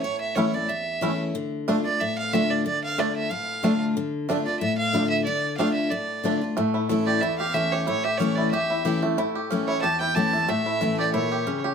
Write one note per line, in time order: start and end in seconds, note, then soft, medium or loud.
0.03 0.66 A2 medium
0.03 0.20 C#5 medium
0.21 0.37 E5 medium
0.36 0.53 E3 medium
0.36 0.44 A3 medium
0.36 0.53 A3 loud
0.36 0.45 C#4 medium
0.36 0.54 C#4 loud
0.36 0.45 E4 medium
0.36 0.52 E4 medium
0.36 0.56 C#5 medium
0.54 0.69 C#4 medium
0.54 0.68 E4 medium
0.54 0.70 D5 medium
0.69 1.32 E2 medium
0.69 1.19 E5 medium
1.01 1.33 E3 medium
1.01 1.33 A3 loud
1.01 1.10 A3 medium
1.01 1.33 C#4 loud
1.01 1.10 C#4 medium
1.01 1.34 E4 loud
1.01 1.10 E4 medium
1.35 1.67 D3 medium
1.68 1.84 D3 medium
1.68 1.75 A3 medium
1.68 1.85 A3 medium
1.68 1.76 D4 medium
1.68 1.85 D4 loud
1.68 1.84 F4 loud
1.85 2.01 D4 medium
1.85 2.00 F4 medium
1.85 2.02 D5 medium
2.00 2.63 A2 medium
2.00 2.18 E5 loud
2.18 2.35 F5 loud
2.33 2.64 D3 medium
2.33 2.41 A3 medium
2.33 2.64 A3 medium
2.33 2.41 D4 medium
2.33 2.65 D4 loud
2.33 2.65 F4 loud
2.33 2.52 E5 loud
2.50 2.65 D5 medium
2.66 2.97 D3 loud
2.66 2.82 D5 loud
2.84 3.01 F5 loud
2.98 3.29 D3 medium
2.98 3.06 A3 medium
2.98 3.29 A3 loud
2.98 3.06 D4 medium
2.98 3.30 D4 medium
2.98 3.30 F4 loud
2.98 3.16 D5 medium
3.16 3.33 E5 loud
3.31 3.93 A2 medium
3.31 3.81 F5 loud
3.63 3.94 D3 loud
3.63 3.71 A3 medium
3.63 3.95 A3 loud
3.63 3.71 D4 medium
3.63 3.95 D4 loud
3.63 3.95 F4 loud
3.97 4.27 D3 loud
4.29 4.45 D3 medium
4.29 4.37 A3 medium
4.29 4.46 A3 medium
4.29 4.37 D4 medium
4.29 4.46 D4 medium
4.29 4.45 F4 loud
4.46 4.61 D4 medium
4.46 4.60 F4 medium
4.46 4.59 D5 medium
4.60 5.24 A2 loud
4.60 4.77 E5 loud
4.78 5.09 F5 loud
4.93 5.25 D3 loud
4.93 5.02 A3 medium
4.93 5.25 A3 medium
4.93 5.02 D4 medium
4.93 5.26 D4 loud
4.93 5.26 F4 loud
5.10 5.24 E5 loud
5.25 5.57 D3 loud
5.25 5.56 D5 loud
5.57 5.90 D3 loud
5.57 5.67 A3 medium
5.57 5.90 A3 medium
5.57 5.67 D4 medium
5.57 5.91 D4 loud
5.57 5.91 F4 medium
5.57 5.73 F5 medium
5.74 5.91 E5 medium
5.90 6.54 A2 medium
5.90 6.41 D5 medium
6.24 6.41 D3 medium
6.24 6.41 A3 medium
6.24 6.32 A3 medium
6.24 6.42 D4 medium
6.24 6.33 D4 medium
6.24 6.40 F4 loud
6.41 6.57 D4 medium
6.41 6.56 F4 medium
6.57 7.19 A2 medium
6.57 6.89 A3 medium
6.74 7.22 E4 medium
6.89 7.21 E3 medium
6.89 7.43 A3 medium
6.89 7.21 A3 medium
6.89 7.21 C#4 medium
6.89 7.22 E4 loud
7.06 7.39 G4 medium
7.06 7.23 D5 loud
7.21 7.85 E2 medium
7.21 7.87 E4 medium
7.21 7.38 E5 loud
7.39 7.71 G4 medium
7.39 7.55 F5 loud
7.54 7.86 E3 medium
7.54 7.86 A3 loud
7.54 8.08 C#4 medium
7.54 7.86 C#4 loud
7.54 7.87 E4 loud
7.54 7.74 E5 loud
7.72 8.03 G4 medium
7.72 7.87 C#5 loud
7.87 8.50 A2 loud
7.87 8.37 E4 medium
7.87 8.05 C#5 loud
8.04 8.50 G4 medium
8.04 8.19 E5 loud
8.17 8.51 E3 medium
8.17 8.51 A3 medium
8.17 8.88 C#4 medium
8.17 8.52 C#4 loud
8.17 8.37 C#5 medium
8.22 8.52 E4 loud
8.36 8.70 E4 medium
8.36 8.51 D5 medium
8.51 9.15 E2 medium
8.51 8.84 G4 medium
8.51 8.99 E5 medium
8.70 9.18 E4 medium
8.85 9.02 E3 medium
8.85 9.02 A3 loud
8.85 9.03 C#4 loud
8.85 9.01 E4 loud
8.85 9.32 G4 medium
9.02 9.86 A3 medium
9.02 9.18 C#4 soft
9.02 9.17 E4 medium
9.18 9.80 A2 medium
9.18 9.67 E4 medium
9.35 9.80 G4 medium
9.51 9.82 E3 medium
9.51 9.82 A3 medium
9.51 9.97 C#4 medium
9.51 9.83 C#4 medium
9.51 9.83 E4 loud
9.67 10.00 E4 medium
9.67 9.81 C#5 medium
9.82 10.46 E2 medium
9.82 10.14 G4 medium
9.82 9.99 A5 loud
10.01 10.46 E4 medium
10.01 10.17 G5 loud
10.15 10.33 E3 medium
10.15 10.33 A3 loud
10.15 10.33 C#4 loud
10.15 10.33 E4 loud
10.15 10.63 G4 medium
10.15 10.50 A5 loud
10.33 10.48 A3 medium
10.33 10.48 E4 medium
10.48 11.11 A2 loud
10.48 10.81 A3 medium
10.48 10.99 E5 loud
10.66 11.11 E4 medium
10.81 11.12 E3 medium
10.81 11.35 A3 medium
10.81 11.13 A3 medium
10.81 11.13 C#4 loud
10.81 11.13 E4 loud
10.99 11.30 G4 medium
10.99 11.13 D5 medium
11.14 11.45 A#2 medium
11.14 11.61 E4 medium
11.14 11.61 C#5 medium
11.32 11.63 G4 medium
11.47 11.74 C#3 medium
11.47 11.74 C#4 medium
11.64 11.74 G4 medium